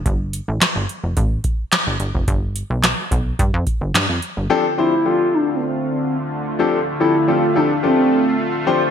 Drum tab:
HH |x-x-x-x-x-x-x-x-|x-x-x-x-x-x-x-x-|----------------|----------------|
CP |----x-------x---|----x-------x---|----------------|----------------|
SD |----o-------o---|----o-------o---|----------------|----------------|
BD |o-------o-o----o|o-----o-o-o-----|----------------|----------------|